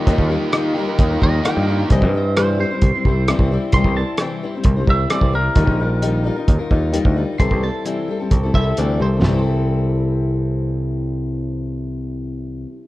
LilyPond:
<<
  \new Staff \with { instrumentName = "Clean electric guitar" } { \time 4/4 \key c \major \tempo 4 = 131 g'8 r2 ees''8 g''4 | ees''4 c''8 c''2 r8 | c'''8 a''8 g''4. e''8 d''8 bes'8~ | bes'2~ bes'8 r4. |
c'''8 a''8 g''4. e''8 d''8 c''8 | r1 | r1 | }
  \new Staff \with { instrumentName = "Overdriven electric guitar" } { \time 4/4 \key c \major <ees bes ees' g'>8 <bes ees' g'>8 <ees bes ees' g'>8 <ees bes ees' g'>8 <ees bes ees' g'>8 <bes ees' g'>8 <ees bes ees' g'>8 <bes ees' g'>8 | r1 | r1 | r1 |
r1 | r1 | r1 | }
  \new Staff \with { instrumentName = "Steel-string acoustic guitar" } { \time 4/4 \key c \major <ees g ees' f' bes'>8 <g ees' f' bes'>8 <ees g ees' f' bes'>8 <g ees' f' bes'>16 <ees' f' bes'>8 <ees' f' bes'>16 <g ees' f' bes'>8 <ees g ees' f' bes'>8 <g ees' f' bes'>8 | <c e g c' e' c''>8 <g c' e' c''>8 <c e g c' e' c''>8 <g c' e' c''>16 <g c' e' c''>8 <g c' e' c''>16 <g c' e' c''>8 <c e g c' e' c''>8 <g c' e' c''>8 | <c e g c' e' c''>8 <g c' e' c''>8 <c e g c' e' c''>8 <g c' e' c''>16 <g c' e' c''>8 <g c' e' c''>16 <g c' e' c''>8 <c e g c' e' c''>8 <g c' e' c''>8 | <ees g ees' f' bes'>8 <g ees' f' bes'>8 <ees g ees' f' bes'>8 <g ees' f' bes'>16 <ees' f' bes'>8 <ees' f' bes'>16 <g ees' f' bes'>8 <ees g ees' f' bes'>8 <g ees' f' bes'>8 |
<c e g c' e' a'>8 <g c' e' a'>8 <c e g c' e' a'>8 <g c' e' a'>16 <g c' e' a'>8 <g c' e' a'>16 <g c' e' a'>8 <c e g c' e' a'>8 <g c' e' a'>8 | <c e g c' e' a'>1~ | <c e g c' e' a'>1 | }
  \new Staff \with { instrumentName = "Picked electric bass" } { \clef bass \time 4/4 \key c \major ees,16 ees,8 r4 r16 ees,8 ees,8 r16 g,8. | c,16 g,4.~ g,16 c,16 r16 c,8. c,8 r16 | c,16 c,8 r4 r16 c,8 c,8 r16 c,8. | ees,16 bes,,4.~ bes,,16 ees,16 r16 ees,8. d,8 r16 |
c,16 c,8 r4 r16 c,8 c,8 d,8 c,8 | c,1~ | c,1 | }
  \new DrumStaff \with { instrumentName = "Drums" } \drummode { \time 4/4 <hh bd>16 bd8. <hh ss>4 <hh bd>8 bd8 <hh ss>4 | <hh bd>16 bd8. <hh ss>4 <hh bd>8 bd8 <hh ss>16 bd8. | <hh bd>16 bd8. <hh ss>4 <hh bd>8 bd8 <hh ss>16 bd8. | <hh bd>16 bd8. hh4 <hh bd>8 bd8 hh16 bd8. |
<hh bd>16 bd8. hh4 <hh bd>8 bd8 hh4 | <sn tomfh>4 r4 r4 r4 | r4 r4 r4 r4 | }
>>